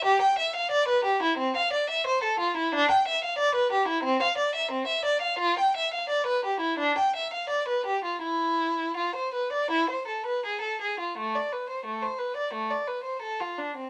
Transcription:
\new Staff \with { instrumentName = "Violin" } { \time 4/4 \key a \minor \tempo 4 = 88 g'16 g''16 e''16 f''16 d''16 b'16 g'16 e'16 c'16 f''16 d''16 e''16 c''16 a'16 f'16 e'16 | d'16 g''16 e''16 f''16 d''16 b'16 g'16 e'16 c'16 f''16 d''16 e''16 c'16 e''16 d''16 f''16 | f'16 g''16 e''16 f''16 d''16 b'16 g'16 e'16 d'16 g''16 e''16 f''16 d''16 b'16 g'16 f'16 | e'4 f'16 c''16 b'16 d''16 e'16 c''16 a'16 b'16 gis'16 a'16 gis'16 f'16 |
a16 d''16 b'16 c''16 a16 c''16 b'16 d''16 a16 d''16 b'16 c''16 a'16 f'16 d'16 c'16 | }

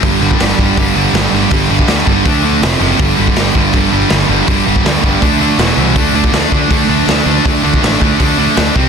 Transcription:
<<
  \new Staff \with { instrumentName = "Distorted electric guitar" } { \clef bass \time 4/4 \key d \mixolydian \tempo 4 = 162 <g, d g>8 <g, d g>8 <g, d g>8 <g, d g>8 <g, d g>8 <g, d g>8 <g, d g>8 <g, d g>8 | <g, d g>8 <g, d g>8 <g, d g>8 <g, d g>8 <d a d'>8 <d a d'>8 <f, c f>8 <f, c f>8 | <g, d g>8 <g, d g>8 <g, d g>8 <g, d g>8 <g, d g>8 <g, d g>8 <g, d g>8 <g, d g>8 | <g, d g>8 <g, d g>8 <g, d g>8 <g, d g>8 <d a d'>8 <d a d'>8 <e, b, e>8 <e, b, e>8 |
<d a d'>8 <d a d'>8 <d a d'>8 <d a d'>8 <d a d'>8 <d a d'>8 <d a d'>8 <d a d'>8 | <d a d'>8 <d a d'>8 <d a d'>8 <d a d'>8 <d a d'>8 <d a d'>8 <d a d'>8 <c g c'>8 | }
  \new Staff \with { instrumentName = "Overdriven electric guitar" } { \clef bass \time 4/4 \key d \mixolydian <g, d g>8 <g, d g>8 <g, d g>8 <g, d g>8 <g, d g>8 <g, d g>8 <g, d g>8 <g, d g>8 | <g, d g>8 <g, d g>8 <g, d g>8 <g, d g>8 <d a d'>8 <d a d'>8 <f, c f>8 <f, c f>8 | <g, d g>8 <g, d g>8 <g, d g>8 <g, d g>8 <g, d g>8 <g, d g>8 <g, d g>8 <g, d g>8 | <g, d g>8 <g, d g>8 <g, d g>8 <g, d g>8 <d a d'>8 <d a d'>8 <e, b, e>8 <e, b, e>8 |
<d a d'>8 <d a d'>8 <d a d'>8 <d a d'>8 <d a d'>8 <d a d'>8 <d a d'>8 <d a d'>8 | <d a d'>8 <d a d'>8 <d a d'>8 <d a d'>8 <d a d'>8 <d a d'>8 <d a d'>8 <c g c'>8 | }
  \new Staff \with { instrumentName = "Picked electric bass" } { \clef bass \time 4/4 \key d \mixolydian g,,8 g,,8 g,,8 g,,8 g,,8 g,,8 g,,8 g,,8 | g,,8 g,,8 d,8 g,,8 d,4 f,,8 fis,,8 | g,,8 g,,8 g,,8 g,,8 g,,8 g,,8 g,,8 g,,8 | g,,8 g,,8 d,8 g,,8 d,4 e,,8 c,8 |
d,8 d,8 d,8 d,8 d,8 d,8 d,8 d,8 | d,8 d,8 a,,8 d,8 d,4 d,8 c,8 | }
  \new DrumStaff \with { instrumentName = "Drums" } \drummode { \time 4/4 <hho bd>8. bd16 <hho sn>8 bd8 <hho bd>4 <hho sn>4 | <hho bd>8. bd16 <hho sn>8 bd8 <hho bd>4 <hho sn>4 | <hho bd>8. bd16 <hho sn>8 bd8 <hho bd>4 <hho sn>4 | <hho bd>8. bd16 <hho sn>8 bd8 <hho bd>4 <hho sn>4 |
<hho bd>8. bd16 <hho sn>8 bd8 <hho bd>4 <hho sn>4 | <hho bd>8. bd16 <hho sn>8 bd8 <hho bd>4 <hho sn>8 bd8 | }
>>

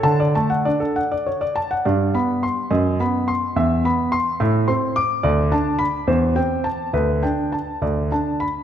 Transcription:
<<
  \new Staff \with { instrumentName = "Grand piano" } { \time 6/8 \key d \major \tempo 4. = 70 a''16 d''16 a''16 fis''16 d''16 a'16 fis''16 d''16 cis''16 d''16 a''16 fis''16 | \key g \major d''8 b''8 c'''8 dis''8 b''8 c'''8 | e''8 b''8 c'''8 e''8 c'''8 d'''8 | d''8 a''8 b''8 c''8 g''8 a''8 |
b'8 g''8 a''8 d''8 a''8 b''8 | }
  \new Staff \with { instrumentName = "Grand piano" } { \time 6/8 \key d \major d8 a8 d'8 r4. | \key g \major g,8 b8 r8 fis,8 b8 r8 | e,8 b8 r8 a,8 c'8 r8 | d,8 d'8 r8 e,8 c'8 r8 |
d,8 d'8 r8 d,8 d'8 r8 | }
>>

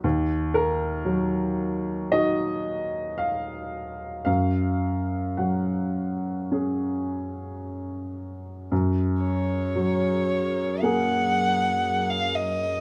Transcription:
<<
  \new Staff \with { instrumentName = "Violin" } { \time 4/4 \key fis \major \tempo 4 = 56 r1 | r1 | r8 cis''4. fis''4~ fis''16 eis''16 dis''8 | }
  \new Staff \with { instrumentName = "Ambient pad" } { \time 4/4 \key fis \major r1 | r1 | <fis gis' ais'>1 | }
  \new Staff \with { instrumentName = "Upright piano" } { \time 4/4 \key fis \major r8 ais'4. dis''4 eis''4 | eis''4 fis''2 r4 | r1 | }
  \new Staff \with { instrumentName = "Upright piano" } { \clef bass \time 4/4 \key fis \major dis,4 fis4 <dis' fis'>2 | fis,4 fis4 <cis' gis'>2 | fis,4 fis4 <ais gis'>2 | }
>>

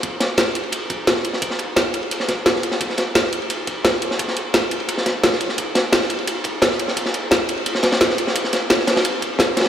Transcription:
\new DrumStaff \with { instrumentName = "Drums" } \drummode { \time 4/4 \tempo 4 = 173 <hh bd cymr>8 <hh cymr sn>8 <hh cymr sn>16 sn16 <hh cymr>16 cymr16 <hh cymr>8 <hh bd cymr>8 <hh cymr sn>16 sn16 <hh cymr>16 sn16 | <hh bd cymr>16 sn16 <hh cymr>8 <hh cymr sn>8 <hh cymr>16 cymr16 <hh cymr>16 sn16 <hh bd cymr sn>8 <hh cymr sn>16 sn16 <hh cymr>16 sn16 | <hh bd cymr>16 sn16 <hh cymr sn>8 <hh cymr sn>16 sn16 <hh cymr>16 cymr16 <hh cymr>8 <hh bd cymr>8 <hh cymr sn>16 sn16 <hh cymr>16 sn16 | <hh bd cymr>16 sn16 <hh cymr>8 <hh cymr sn>8 <hh cymr>16 cymr16 <hh cymr>16 sn16 <hh bd cymr sn>8 <hh cymr sn>16 sn16 <hh cymr>16 sn16 |
<hh bd cymr>8 <hh cymr sn>8 <hh cymr sn>16 sn16 <hh cymr>16 cymr16 <hh cymr>8 <hh bd cymr>8 <hh cymr sn>16 sn16 <hh cymr>16 sn16 | <hh bd cymr>16 sn16 <hh cymr>8 <hh cymr sn>8 <hh cymr>16 cymr16 <hh cymr>16 sn16 <hh bd cymr sn>16 <cymr sn>16 <hh cymr sn>16 sn16 <hh cymr>16 sn16 | <hh bd cymr>16 sn16 <hh cymr sn>8 <hh cymr sn>16 sn16 <hh cymr sn>16 <cymr sn>16 <hh cymr>8 <hh bd cymr>8 <hh cymr sn>16 bd16 <hh cymr sn>32 <cymr sn>32 cymr16 | }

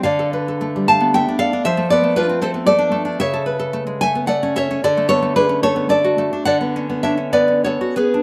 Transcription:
\new Staff \with { instrumentName = "Nylon-string guitar" } { \time 3/4 \key d \dorian \tempo 4 = 112 << { <d'' f''>4. <f'' a''>8 <e'' g''>8 <d'' f''>8 | <c'' e''>8 <b' d''>8 <f' b'>8 <a' c''>8 <a' d''>4 | \key d \lydian <cis'' e''>4. <e'' gis''>8 <d'' fis''>8 <cis'' e''>8 | <a' d''>8 <a' cis''>8 <gis' b'>8 <a' cis''>8 <a' d''>4 |
<d'' fis''>4 <cis'' e''>8 <b' d''>8 <a' cis''>8 <gis' b'>8 | } \\ { d16 a'16 b'16 a'16 a16 g16 a16 b16 a16 d'16 a'16 d'16 | f16 a16 b16 a16 d'16 c'16 a16 b16 a16 d'16 a16 d'16 | cis16 a'16 b'16 a'16 a16 gis16 a16 b16 a16 cis'16 a'16 cis'16 | d16 a16 b16 a16 d'16 cis'16 a16 b16 a16 fis'16 a16 d'16 |
d16 b16 cis'16 b16 d'16 cis'16 b16 cis'16 b16 fis'16 b16 d'16 | } >> }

